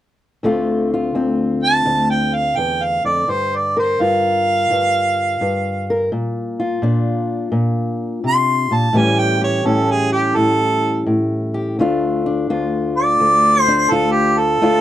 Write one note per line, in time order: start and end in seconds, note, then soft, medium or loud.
0.43 1.14 D2 medium
0.43 6.12 D3 soft
0.43 3.25 A3 soft
0.43 1.14 C4 soft
0.43 0.93 F4 medium
0.94 3.31 F4 medium
1.15 1.84 D2 medium
1.15 3.25 C4 soft
1.63 2.08 A5 medium
1.85 2.56 D2 medium
2.10 2.36 G5 medium
2.34 2.58 F5 medium
2.57 3.04 E2 medium
2.57 2.86 G5 medium
2.84 3.05 F5 medium
3.04 3.27 F2 medium
3.04 3.32 D5 medium
3.28 3.99 G2 medium
3.28 3.57 C5 medium
3.56 3.77 D5 medium
3.77 5.89 A#4 medium
3.77 4.03 C5 medium
4.00 4.69 G2 medium
4.00 6.10 F4 soft
4.00 6.09 F5 medium
4.71 5.40 G2 medium
5.41 6.09 G2 medium
5.90 6.10 A#4 medium
6.12 6.81 A#2 medium
6.60 8.93 F4 medium
6.82 7.50 A#2 medium
6.82 8.93 D4 soft
7.52 8.23 A#2 medium
8.24 8.70 C3 medium
8.28 8.75 C6 medium
8.71 8.93 A#2 medium
8.71 8.99 A5 medium
8.93 9.64 A2 medium
8.93 11.76 E3 medium
8.93 11.79 G3 soft
8.93 9.64 C#4 medium
8.93 9.40 G4 medium
8.98 9.20 G#5 medium
9.19 9.42 G5 medium
9.41 11.53 G4 medium
9.41 9.67 C#5 medium
9.65 10.35 A2 medium
9.65 11.76 C#4 medium
9.65 9.92 A4 medium
9.91 10.12 G#4 medium
10.12 10.37 G4 medium
10.35 11.05 A2 medium
10.35 11.05 A4 medium
11.06 11.78 A2 medium
11.54 11.76 G4 medium
11.79 12.50 D2 medium
11.79 14.61 A3 medium
11.79 12.26 D4 medium
11.79 12.50 F4 medium
12.26 13.68 D4 medium
12.50 13.20 D2 medium
12.50 13.91 F4 medium
12.97 13.61 D5 loud
13.20 13.90 D2 medium
13.61 13.92 C5 loud
13.68 14.62 D4 medium
13.91 14.61 D2 medium
13.91 14.63 F4 medium
13.91 14.13 A4 medium
14.12 14.40 G4 medium
14.38 14.81 A4 loud
14.61 14.81 D2 medium
14.61 14.81 A3 medium
14.61 14.81 D4 medium
14.61 14.81 F4 medium